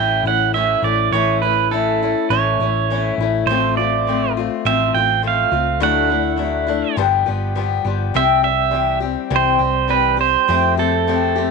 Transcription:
Already playing: picked electric bass A1, steel-string acoustic guitar A2 E3 A3 C#4 E4, pedal steel guitar G5
0.23 picked electric bass A1, steel-string acoustic guitar C#4 E4, pedal steel guitar F#5
0.28 steel-string acoustic guitar A3
0.54 steel-string acoustic guitar E3 A3 C#4 E4, pedal steel guitar E5
0.82 picked electric bass A1, steel-string acoustic guitar A3 C#4 E4, pedal steel guitar D5
1.12 picked electric bass A1, steel-string acoustic guitar A2 E3 A3 C#4 E4, pedal steel guitar C#5
1.42 steel-string acoustic guitar A3 C#4 E4, pedal steel guitar B4
1.71 steel-string acoustic guitar E3 A3 C#4 E4, pedal steel guitar A4
2.02 steel-string acoustic guitar A3 C#4 E4
2.30 picked electric bass A1, steel-string acoustic guitar A2 E3 A3 C#4 E4, pedal steel guitar C#5
2.60 picked electric bass A1, steel-string acoustic guitar A3 C#4 E4
2.90 steel-string acoustic guitar E3 A3 C#4 E4
3.18 picked electric bass A1, steel-string acoustic guitar E4
3.22 steel-string acoustic guitar A3 C#4
3.46 picked electric bass A1, steel-string acoustic guitar A2 F3, pedal steel guitar C5
3.51 steel-string acoustic guitar A3 C4 F4
3.77 steel-string acoustic guitar A3 C4 F4, pedal steel guitar D5
4.07 steel-string acoustic guitar F3 A3 C4 F4
4.37 steel-string acoustic guitar A3 C4 F4
4.65 picked electric bass A1, steel-string acoustic guitar A2 F3 A3 C4 F4, pedal steel guitar E5
4.94 picked electric bass A1, steel-string acoustic guitar A3 C4 F4, pedal steel guitar G5
5.22 steel-string acoustic guitar F3 A3 C4 F4
5.27 pedal steel guitar F5
5.51 picked electric bass C#2, steel-string acoustic guitar A3 C4 F4
5.80 picked electric bass D2, steel-string acoustic guitar D3 F#3 A3 D4 E4, pedal steel guitar F#5
6.09 steel-string acoustic guitar A3 D4 E4
6.36 steel-string acoustic guitar F#3 A3 D4 E4
6.67 steel-string acoustic guitar A3 D4 E4
6.96 picked electric bass G1, steel-string acoustic guitar G2 D3 F3 G3 B3 G4
7.26 picked electric bass G1, steel-string acoustic guitar F3 G3 B3 G4
7.55 steel-string acoustic guitar F3 G3 B3 G4
7.84 picked electric bass G1, steel-string acoustic guitar F3 G3 B3 G4
8.14 picked electric bass C2, steel-string acoustic guitar C3 E3 G3 C4 G4, pedal steel guitar E5
8.43 steel-string acoustic guitar G3 C4 G4, pedal steel guitar E5
8.71 steel-string acoustic guitar E3 G3 C4 G4
9.00 steel-string acoustic guitar G3 C4 G4
9.30 picked electric bass C2, steel-string acoustic guitar C3 E3 G3 C4 G4
9.36 pedal steel guitar C5
9.59 picked electric bass C2, steel-string acoustic guitar G3 C4 G4
9.88 steel-string acoustic guitar E3 G3 C4 G4, pedal steel guitar B4
10.17 steel-string acoustic guitar G3 C4 G4, pedal steel guitar C5
10.48 picked electric bass F2, steel-string acoustic guitar F3 A3 C4 G4
10.77 steel-string acoustic guitar A3 C4 G4, pedal steel guitar A4
11.07 steel-string acoustic guitar F3 A3 C4 G4
11.36 steel-string acoustic guitar A3 C4 G4

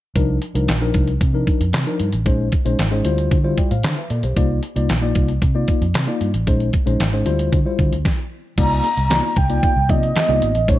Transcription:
0.15 fingered electric bass C2, tine electric piano F3 D4 D#4 A#4, kick, closed hi-hat
0.42 closed hi-hat
0.55 fingered electric bass C2, tine electric piano F3 D4 D#4 A#4, closed hi-hat
0.68 fingered electric bass A#1, snare, clap, closed hi-hat
0.81 tine electric piano F3 D4 D#4 A#4
0.94 fingered electric bass C2, kick, closed hi-hat
1.07 closed hi-hat
1.21 fingered electric bass C3, kick, closed hi-hat
1.34 tine electric piano F3 D4 D#4 A#4
1.47 kick, closed hi-hat
1.60 fingered electric bass F2, closed hi-hat
1.73 fingered electric bass C3, snare, clap, closed hi-hat
1.86 tine electric piano F3 D4 D#4 A#4, closed hi-hat
2.00 fingered electric bass G2, closed hi-hat
2.13 fingered electric bass A1, closed hi-hat
2.26 fingered electric bass A#1, tine electric piano G#3 C#4 D#4 C5, kick, closed hi-hat
2.52 kick, closed hi-hat
2.65 fingered electric bass A#1, tine electric piano G#3 C#4 D#4 C5, closed hi-hat
2.79 fingered electric bass G#1, snare, clap, closed hi-hat
2.92 tine electric piano G#3 C#4 D#4 C5
3.04 fingered electric bass D2, tine electric piano G3 E4 F4 C5, closed hi-hat
3.18 closed hi-hat
3.31 fingered electric bass D3, kick, closed hi-hat
3.44 tine electric piano G3 E4 F4 C5
3.57 tine electric piano D5 G5, kick, closed hi-hat
3.71 fingered electric bass A2, tine electric piano C5 F5, closed hi-hat
3.83 fingered electric bass D3, snare, clap, closed hi-hat
3.97 tine electric piano B4 E5, closed hi-hat
4.10 fingered electric bass A#2, tine electric piano A4 D5, closed hi-hat
4.23 fingered electric bass B1, tine electric piano G4 C5, closed hi-hat
4.36 fingered electric bass C2, tine electric piano A#3 D#4 F4 D5, kick, closed hi-hat
4.63 closed hi-hat
4.76 fingered electric bass C2, tine electric piano A#3 D#4 F4 D5, closed hi-hat
4.89 fingered electric bass A#1, snare, clap, closed hi-hat
5.02 tine electric piano A#3 D#4 F4 D5
5.15 fingered electric bass C2, kick, closed hi-hat
5.28 closed hi-hat
5.42 fingered electric bass C3, kick, closed hi-hat
5.55 tine electric piano A#3 D#4 F4 D5
5.68 kick, closed hi-hat
5.81 fingered electric bass F2, closed hi-hat
5.94 fingered electric bass C3, snare, clap, closed hi-hat
6.07 tine electric piano A#3 D#4 F4 D5, closed hi-hat
6.21 fingered electric bass G2, closed hi-hat
6.34 fingered electric bass A1, closed hi-hat
6.47 fingered electric bass A#1, tine electric piano G#3 C#4 D#4 C5, kick, closed hi-hat
6.60 closed hi-hat
6.73 kick, closed hi-hat
6.86 fingered electric bass A#1, tine electric piano G#3 C#4 D#4 C5, closed hi-hat
7.00 fingered electric bass G#1, snare, clap, closed hi-hat
7.13 tine electric piano G#3 C#4 D#4 C5, closed hi-hat
7.26 fingered electric bass D2, tine electric piano G3 E4 F4 C5, closed hi-hat
7.39 closed hi-hat
7.53 fingered electric bass D3, kick, closed hi-hat
7.65 tine electric piano G3 E4 F4 C5
7.79 fingered electric bass D3, kick, closed hi-hat
7.92 fingered electric bass D2, closed hi-hat
8.05 kick, snare
8.58 fingered electric bass C2, tine electric piano A#3 D#4 F4 D5, soft synth lead A#5, kick, closed hi-hat, crash
8.84 closed hi-hat, muted conga
8.97 fingered electric bass C2, closed hi-hat
9.10 tine electric piano A#3 D#4 F4 D5, snare, clap, closed hi-hat, high conga
9.36 fingered electric bass C2, soft synth lead G5, kick, closed hi-hat
9.49 tine electric piano A#3 D#4 F4 D5, closed hi-hat
9.63 kick, closed hi-hat, muted conga
9.76 fingered electric bass C2
9.89 fingered electric bass C3, tine electric piano A#3 D#4 F4 D5, soft synth lead D#5, kick, closed hi-hat, muted conga, low conga
10.03 closed hi-hat
10.16 snare, clap, closed hi-hat, high conga
10.28 fingered electric bass C2, tine electric piano A#3 D#4 F4 D5, closed hi-hat, high conga
10.42 fingered electric bass G#1, closed hi-hat
10.55 fingered electric bass A1, closed hi-hat
10.68 fingered electric bass A#1, tine electric piano G#3 C#4 D#4 C5, soft synth lead C#5, kick, closed hi-hat

